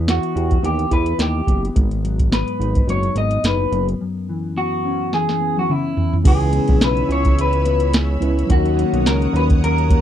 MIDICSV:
0, 0, Header, 1, 7, 480
1, 0, Start_track
1, 0, Tempo, 561272
1, 1508, Time_signature, 4, 2, 24, 8
1, 8561, End_track
2, 0, Start_track
2, 0, Title_t, "String machine"
2, 0, Program_c, 0, 50
2, 5336, Note_on_c, 0, 73, 81
2, 5336, Note_on_c, 0, 83, 74
2, 5342, Note_on_c, 0, 88, 89
2, 7242, Note_off_c, 0, 73, 0
2, 7242, Note_off_c, 0, 83, 0
2, 7245, Note_off_c, 0, 88, 0
2, 7255, Note_on_c, 0, 73, 81
2, 7257, Note_on_c, 0, 78, 74
2, 7261, Note_on_c, 0, 87, 87
2, 8561, Note_off_c, 0, 73, 0
2, 8561, Note_off_c, 0, 78, 0
2, 8561, Note_off_c, 0, 87, 0
2, 8561, End_track
3, 0, Start_track
3, 0, Title_t, "Clean electric guitar"
3, 0, Program_c, 1, 27
3, 85, Note_on_c, 1, 66, 70
3, 557, Note_off_c, 1, 66, 0
3, 560, Note_on_c, 1, 67, 84
3, 777, Note_off_c, 1, 67, 0
3, 795, Note_on_c, 1, 71, 89
3, 1038, Note_off_c, 1, 71, 0
3, 1043, Note_on_c, 1, 67, 68
3, 1382, Note_off_c, 1, 67, 0
3, 1997, Note_on_c, 1, 71, 68
3, 2478, Note_off_c, 1, 71, 0
3, 2481, Note_on_c, 1, 73, 92
3, 2714, Note_off_c, 1, 73, 0
3, 2718, Note_on_c, 1, 75, 94
3, 2958, Note_off_c, 1, 75, 0
3, 2961, Note_on_c, 1, 71, 68
3, 3302, Note_off_c, 1, 71, 0
3, 3913, Note_on_c, 1, 66, 73
3, 4393, Note_off_c, 1, 66, 0
3, 4396, Note_on_c, 1, 68, 95
3, 4776, Note_off_c, 1, 68, 0
3, 4780, Note_on_c, 1, 66, 76
3, 4885, Note_off_c, 1, 66, 0
3, 4885, Note_on_c, 1, 64, 67
3, 5249, Note_off_c, 1, 64, 0
3, 5366, Note_on_c, 1, 68, 81
3, 5847, Note_off_c, 1, 68, 0
3, 5850, Note_on_c, 1, 71, 86
3, 6086, Note_off_c, 1, 71, 0
3, 6091, Note_on_c, 1, 73, 99
3, 6327, Note_off_c, 1, 73, 0
3, 6338, Note_on_c, 1, 71, 92
3, 6770, Note_off_c, 1, 71, 0
3, 7283, Note_on_c, 1, 66, 87
3, 7759, Note_on_c, 1, 70, 92
3, 7769, Note_off_c, 1, 66, 0
3, 7977, Note_off_c, 1, 70, 0
3, 8010, Note_on_c, 1, 71, 103
3, 8071, Note_off_c, 1, 71, 0
3, 8243, Note_on_c, 1, 70, 95
3, 8561, Note_off_c, 1, 70, 0
3, 8561, End_track
4, 0, Start_track
4, 0, Title_t, "Reed electric piano"
4, 0, Program_c, 2, 4
4, 5326, Note_on_c, 2, 56, 63
4, 5337, Note_on_c, 2, 61, 60
4, 5353, Note_on_c, 2, 64, 59
4, 5368, Note_on_c, 2, 71, 74
4, 5487, Control_c, 2, 64, 127
4, 6983, Note_off_c, 2, 56, 0
4, 6988, Note_off_c, 2, 61, 0
4, 6996, Note_off_c, 2, 64, 0
4, 7004, Note_off_c, 2, 71, 0
4, 7011, Note_on_c, 2, 56, 56
4, 7019, Note_on_c, 2, 61, 55
4, 7028, Note_on_c, 2, 64, 52
4, 7034, Note_on_c, 2, 71, 63
4, 7241, Note_on_c, 2, 54, 67
4, 7246, Note_off_c, 2, 61, 0
4, 7257, Note_on_c, 2, 61, 58
4, 7259, Note_off_c, 2, 56, 0
4, 7268, Note_off_c, 2, 64, 0
4, 7270, Note_off_c, 2, 71, 0
4, 7274, Note_on_c, 2, 63, 63
4, 7278, Control_c, 2, 64, 0
4, 7284, Note_on_c, 2, 70, 76
4, 7432, Control_c, 2, 64, 127
4, 8561, Note_off_c, 2, 54, 0
4, 8561, Note_off_c, 2, 61, 0
4, 8561, Note_off_c, 2, 63, 0
4, 8561, Note_off_c, 2, 70, 0
4, 8561, End_track
5, 0, Start_track
5, 0, Title_t, "Clean electric guitar"
5, 0, Program_c, 3, 27
5, 0, Note_on_c, 3, 52, 73
5, 0, Note_on_c, 3, 59, 54
5, 61, Note_on_c, 3, 64, 54
5, 297, Note_on_c, 3, 67, 58
5, 531, Note_off_c, 3, 59, 0
5, 535, Note_on_c, 3, 59, 62
5, 771, Note_off_c, 3, 64, 0
5, 781, Note_on_c, 3, 64, 57
5, 1013, Note_off_c, 3, 67, 0
5, 1023, Note_on_c, 3, 67, 57
5, 1261, Note_off_c, 3, 59, 0
5, 1265, Note_on_c, 3, 59, 57
5, 1502, Note_off_c, 3, 52, 0
5, 1503, Note_on_c, 3, 44, 72
5, 1557, Note_off_c, 3, 64, 0
5, 1558, Note_off_c, 3, 67, 0
5, 1743, Note_on_c, 3, 54, 53
5, 1976, Note_off_c, 3, 59, 0
5, 1979, Note_on_c, 3, 59, 56
5, 2219, Note_on_c, 3, 63, 56
5, 2458, Note_off_c, 3, 54, 0
5, 2461, Note_on_c, 3, 54, 64
5, 2701, Note_off_c, 3, 59, 0
5, 2705, Note_on_c, 3, 59, 55
5, 2929, Note_off_c, 3, 63, 0
5, 2939, Note_on_c, 3, 63, 59
5, 3181, Note_off_c, 3, 44, 0
5, 3185, Note_on_c, 3, 42, 71
5, 3237, Note_off_c, 3, 63, 0
5, 3417, Note_off_c, 3, 42, 0
5, 3428, Note_on_c, 3, 42, 73
5, 3666, Note_off_c, 3, 54, 0
5, 3670, Note_on_c, 3, 52, 50
5, 3901, Note_off_c, 3, 59, 0
5, 3905, Note_on_c, 3, 59, 52
5, 4148, Note_on_c, 3, 61, 56
5, 4384, Note_off_c, 3, 52, 0
5, 4388, Note_on_c, 3, 52, 65
5, 4620, Note_off_c, 3, 59, 0
5, 4623, Note_on_c, 3, 59, 53
5, 4868, Note_off_c, 3, 61, 0
5, 4872, Note_on_c, 3, 61, 57
5, 5092, Note_off_c, 3, 52, 0
5, 5095, Note_on_c, 3, 52, 53
5, 5337, Note_on_c, 3, 49, 80
5, 5340, Note_on_c, 3, 68, 70
5, 5348, Note_off_c, 3, 42, 0
5, 5577, Note_off_c, 3, 59, 0
5, 5580, Note_on_c, 3, 59, 57
5, 5606, Note_off_c, 3, 61, 0
5, 5828, Note_on_c, 3, 64, 61
5, 6040, Note_off_c, 3, 68, 0
5, 6050, Note_on_c, 3, 68, 64
5, 6297, Note_off_c, 3, 64, 0
5, 6307, Note_on_c, 3, 64, 62
5, 6536, Note_off_c, 3, 59, 0
5, 6547, Note_on_c, 3, 59, 60
5, 6779, Note_off_c, 3, 68, 0
5, 6789, Note_on_c, 3, 68, 67
5, 7006, Note_off_c, 3, 64, 0
5, 7017, Note_on_c, 3, 64, 59
5, 7256, Note_off_c, 3, 52, 0
5, 7260, Note_on_c, 3, 51, 83
5, 7262, Note_off_c, 3, 49, 0
5, 7265, Note_off_c, 3, 68, 0
5, 7268, Note_on_c, 3, 66, 69
5, 7315, Note_off_c, 3, 64, 0
5, 7319, Note_off_c, 3, 59, 0
5, 7507, Note_on_c, 3, 58, 60
5, 7750, Note_on_c, 3, 61, 62
5, 7997, Note_off_c, 3, 66, 0
5, 8000, Note_on_c, 3, 66, 67
5, 8228, Note_off_c, 3, 61, 0
5, 8243, Note_on_c, 3, 61, 68
5, 8465, Note_off_c, 3, 58, 0
5, 8468, Note_on_c, 3, 58, 61
5, 8561, Note_off_c, 3, 51, 0
5, 8561, Note_off_c, 3, 58, 0
5, 8561, Note_off_c, 3, 61, 0
5, 8561, Note_off_c, 3, 66, 0
5, 8561, End_track
6, 0, Start_track
6, 0, Title_t, "Analog synth bass"
6, 0, Program_c, 4, 38
6, 0, Note_on_c, 4, 40, 97
6, 166, Note_off_c, 4, 40, 0
6, 306, Note_on_c, 4, 40, 89
6, 498, Note_off_c, 4, 40, 0
6, 542, Note_on_c, 4, 39, 86
6, 736, Note_off_c, 4, 39, 0
6, 780, Note_on_c, 4, 40, 86
6, 975, Note_off_c, 4, 40, 0
6, 1016, Note_on_c, 4, 39, 89
6, 1213, Note_off_c, 4, 39, 0
6, 1259, Note_on_c, 4, 30, 81
6, 1455, Note_off_c, 4, 30, 0
6, 1504, Note_on_c, 4, 32, 101
6, 2088, Note_off_c, 4, 32, 0
6, 2220, Note_on_c, 4, 32, 88
6, 2415, Note_off_c, 4, 32, 0
6, 2458, Note_on_c, 4, 30, 85
6, 2654, Note_off_c, 4, 30, 0
6, 2698, Note_on_c, 4, 32, 84
6, 2895, Note_off_c, 4, 32, 0
6, 2941, Note_on_c, 4, 30, 85
6, 3136, Note_off_c, 4, 30, 0
6, 3181, Note_on_c, 4, 30, 99
6, 3376, Note_off_c, 4, 30, 0
6, 5347, Note_on_c, 4, 37, 105
6, 5645, Note_off_c, 4, 37, 0
6, 5720, Note_on_c, 4, 34, 102
6, 5806, Note_off_c, 4, 34, 0
6, 5824, Note_on_c, 4, 35, 91
6, 6018, Note_off_c, 4, 35, 0
6, 6062, Note_on_c, 4, 37, 98
6, 6990, Note_off_c, 4, 37, 0
6, 7027, Note_on_c, 4, 37, 87
6, 7219, Note_off_c, 4, 37, 0
6, 7268, Note_on_c, 4, 39, 112
6, 7565, Note_off_c, 4, 39, 0
6, 7637, Note_on_c, 4, 35, 93
6, 7738, Note_on_c, 4, 37, 104
6, 7751, Note_off_c, 4, 35, 0
6, 7934, Note_off_c, 4, 37, 0
6, 7982, Note_on_c, 4, 39, 94
6, 8561, Note_off_c, 4, 39, 0
6, 8561, End_track
7, 0, Start_track
7, 0, Title_t, "Drums"
7, 69, Note_on_c, 9, 38, 93
7, 77, Note_on_c, 9, 42, 85
7, 155, Note_off_c, 9, 38, 0
7, 162, Note_off_c, 9, 42, 0
7, 199, Note_on_c, 9, 42, 32
7, 284, Note_off_c, 9, 42, 0
7, 315, Note_on_c, 9, 42, 53
7, 400, Note_off_c, 9, 42, 0
7, 435, Note_on_c, 9, 42, 39
7, 440, Note_on_c, 9, 36, 84
7, 520, Note_off_c, 9, 42, 0
7, 526, Note_off_c, 9, 36, 0
7, 552, Note_on_c, 9, 42, 73
7, 637, Note_off_c, 9, 42, 0
7, 676, Note_on_c, 9, 42, 31
7, 762, Note_off_c, 9, 42, 0
7, 780, Note_on_c, 9, 36, 74
7, 782, Note_on_c, 9, 42, 59
7, 866, Note_off_c, 9, 36, 0
7, 867, Note_off_c, 9, 42, 0
7, 907, Note_on_c, 9, 42, 51
7, 993, Note_off_c, 9, 42, 0
7, 1019, Note_on_c, 9, 42, 89
7, 1025, Note_on_c, 9, 38, 105
7, 1104, Note_off_c, 9, 42, 0
7, 1111, Note_off_c, 9, 38, 0
7, 1259, Note_on_c, 9, 36, 84
7, 1268, Note_on_c, 9, 42, 58
7, 1345, Note_off_c, 9, 36, 0
7, 1353, Note_off_c, 9, 42, 0
7, 1409, Note_on_c, 9, 42, 38
7, 1495, Note_off_c, 9, 42, 0
7, 1505, Note_on_c, 9, 36, 97
7, 1507, Note_on_c, 9, 42, 78
7, 1591, Note_off_c, 9, 36, 0
7, 1592, Note_off_c, 9, 42, 0
7, 1636, Note_on_c, 9, 42, 31
7, 1722, Note_off_c, 9, 42, 0
7, 1752, Note_on_c, 9, 42, 65
7, 1837, Note_off_c, 9, 42, 0
7, 1876, Note_on_c, 9, 42, 46
7, 1877, Note_on_c, 9, 36, 81
7, 1962, Note_off_c, 9, 36, 0
7, 1962, Note_off_c, 9, 42, 0
7, 1987, Note_on_c, 9, 38, 98
7, 1995, Note_on_c, 9, 42, 79
7, 2073, Note_off_c, 9, 38, 0
7, 2081, Note_off_c, 9, 42, 0
7, 2117, Note_on_c, 9, 42, 33
7, 2203, Note_off_c, 9, 42, 0
7, 2237, Note_on_c, 9, 42, 57
7, 2322, Note_off_c, 9, 42, 0
7, 2355, Note_on_c, 9, 42, 39
7, 2361, Note_on_c, 9, 36, 87
7, 2440, Note_off_c, 9, 42, 0
7, 2446, Note_off_c, 9, 36, 0
7, 2472, Note_on_c, 9, 42, 72
7, 2557, Note_off_c, 9, 42, 0
7, 2592, Note_on_c, 9, 42, 31
7, 2678, Note_off_c, 9, 42, 0
7, 2700, Note_on_c, 9, 42, 64
7, 2785, Note_off_c, 9, 42, 0
7, 2829, Note_on_c, 9, 42, 54
7, 2915, Note_off_c, 9, 42, 0
7, 2942, Note_on_c, 9, 42, 90
7, 2948, Note_on_c, 9, 38, 103
7, 3027, Note_off_c, 9, 42, 0
7, 3034, Note_off_c, 9, 38, 0
7, 3186, Note_on_c, 9, 42, 57
7, 3272, Note_off_c, 9, 42, 0
7, 3323, Note_on_c, 9, 42, 38
7, 3409, Note_off_c, 9, 42, 0
7, 4387, Note_on_c, 9, 38, 50
7, 4472, Note_off_c, 9, 38, 0
7, 4523, Note_on_c, 9, 38, 50
7, 4609, Note_off_c, 9, 38, 0
7, 4761, Note_on_c, 9, 48, 58
7, 4846, Note_off_c, 9, 48, 0
7, 4870, Note_on_c, 9, 47, 73
7, 4956, Note_off_c, 9, 47, 0
7, 5107, Note_on_c, 9, 43, 84
7, 5193, Note_off_c, 9, 43, 0
7, 5244, Note_on_c, 9, 43, 78
7, 5330, Note_off_c, 9, 43, 0
7, 5347, Note_on_c, 9, 36, 117
7, 5347, Note_on_c, 9, 49, 95
7, 5348, Note_on_c, 9, 42, 85
7, 5433, Note_off_c, 9, 36, 0
7, 5433, Note_off_c, 9, 49, 0
7, 5434, Note_off_c, 9, 42, 0
7, 5478, Note_on_c, 9, 42, 33
7, 5563, Note_off_c, 9, 42, 0
7, 5582, Note_on_c, 9, 42, 72
7, 5668, Note_off_c, 9, 42, 0
7, 5710, Note_on_c, 9, 42, 50
7, 5718, Note_on_c, 9, 36, 87
7, 5795, Note_off_c, 9, 42, 0
7, 5803, Note_off_c, 9, 36, 0
7, 5826, Note_on_c, 9, 38, 115
7, 5834, Note_on_c, 9, 42, 97
7, 5911, Note_off_c, 9, 38, 0
7, 5919, Note_off_c, 9, 42, 0
7, 5960, Note_on_c, 9, 42, 37
7, 6045, Note_off_c, 9, 42, 0
7, 6078, Note_on_c, 9, 42, 62
7, 6163, Note_off_c, 9, 42, 0
7, 6198, Note_on_c, 9, 42, 45
7, 6204, Note_on_c, 9, 36, 90
7, 6283, Note_off_c, 9, 42, 0
7, 6290, Note_off_c, 9, 36, 0
7, 6316, Note_on_c, 9, 42, 91
7, 6402, Note_off_c, 9, 42, 0
7, 6439, Note_on_c, 9, 42, 35
7, 6524, Note_off_c, 9, 42, 0
7, 6546, Note_on_c, 9, 42, 69
7, 6632, Note_off_c, 9, 42, 0
7, 6670, Note_on_c, 9, 42, 58
7, 6755, Note_off_c, 9, 42, 0
7, 6786, Note_on_c, 9, 42, 98
7, 6793, Note_on_c, 9, 38, 113
7, 6871, Note_off_c, 9, 42, 0
7, 6878, Note_off_c, 9, 38, 0
7, 7030, Note_on_c, 9, 42, 65
7, 7115, Note_off_c, 9, 42, 0
7, 7172, Note_on_c, 9, 42, 46
7, 7258, Note_off_c, 9, 42, 0
7, 7267, Note_on_c, 9, 42, 87
7, 7269, Note_on_c, 9, 36, 122
7, 7353, Note_off_c, 9, 42, 0
7, 7354, Note_off_c, 9, 36, 0
7, 7402, Note_on_c, 9, 42, 31
7, 7488, Note_off_c, 9, 42, 0
7, 7517, Note_on_c, 9, 42, 75
7, 7602, Note_off_c, 9, 42, 0
7, 7643, Note_on_c, 9, 42, 52
7, 7728, Note_off_c, 9, 42, 0
7, 7750, Note_on_c, 9, 38, 108
7, 7758, Note_on_c, 9, 42, 91
7, 7835, Note_off_c, 9, 38, 0
7, 7843, Note_off_c, 9, 42, 0
7, 7884, Note_on_c, 9, 42, 36
7, 7970, Note_off_c, 9, 42, 0
7, 8003, Note_on_c, 9, 42, 66
7, 8088, Note_off_c, 9, 42, 0
7, 8123, Note_on_c, 9, 42, 47
7, 8126, Note_on_c, 9, 36, 97
7, 8209, Note_off_c, 9, 42, 0
7, 8212, Note_off_c, 9, 36, 0
7, 8243, Note_on_c, 9, 42, 90
7, 8329, Note_off_c, 9, 42, 0
7, 8366, Note_on_c, 9, 42, 35
7, 8452, Note_off_c, 9, 42, 0
7, 8466, Note_on_c, 9, 36, 87
7, 8471, Note_on_c, 9, 42, 71
7, 8551, Note_off_c, 9, 36, 0
7, 8557, Note_off_c, 9, 42, 0
7, 8561, End_track
0, 0, End_of_file